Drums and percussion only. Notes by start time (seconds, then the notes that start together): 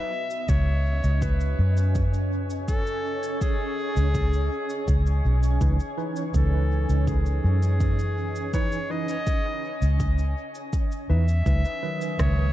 0.31 cabasa
0.49 kick, cabasa
1.04 cabasa
1.22 kick, cabasa
1.40 cabasa
1.77 cabasa
1.95 kick, cabasa
2.14 cabasa
2.50 cabasa
2.68 kick, cabasa
2.87 cabasa
3.23 cabasa
3.41 kick, cabasa
3.97 cabasa
4.15 kick, cabasa
4.33 cabasa
4.70 cabasa
4.88 kick, cabasa
5.06 cabasa
5.43 cabasa
5.61 kick, cabasa
5.80 cabasa
6.16 cabasa
6.34 kick, cabasa
6.89 cabasa
7.07 kick, cabasa
7.26 cabasa
7.63 cabasa
7.80 kick, cabasa
7.99 cabasa
8.36 cabasa
8.54 kick, cabasa
8.72 cabasa
9.09 cabasa
9.27 kick, cabasa
9.82 cabasa
10.00 kick, cabasa
10.18 cabasa
10.55 cabasa
10.73 kick, cabasa
10.92 cabasa
11.28 cabasa
11.46 kick, cabasa
11.65 cabasa
12.01 cabasa
12.19 kick, cross-stick, cabasa